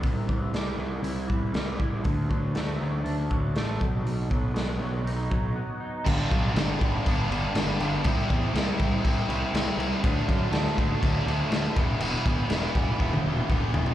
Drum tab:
CC |----------------|----------------|----------------|x-x-x-x-x-x-x-x-|
HH |o---o---o---o---|o---o---o---o---|o---o---o-------|----------------|
SD |----o-------o---|----o-------o---|----o-----------|----o-------o---|
T1 |----------------|----------------|----------------|----------------|
T2 |----------------|----------------|----------------|----------------|
FT |----------------|----------------|----------------|----------------|
BD |o-o-------o---o-|o-o-------o---o-|--o-------o-----|o-o---o-o-------|

CC |x-x-x-x-x-x-x-x-|x-x-x-x-x-x-x-x-|x-x-x-x---------|
HH |----------------|----------------|----------------|
SD |----o-------o---|----oo------o---|----o-----------|
T1 |----------------|----------------|---------o------|
T2 |----------------|----------------|-----------o----|
FT |----------------|----------------|--------------oo|
BD |o-o---o-o-------|o-o---o-o-----o-|--o---o-o---o---|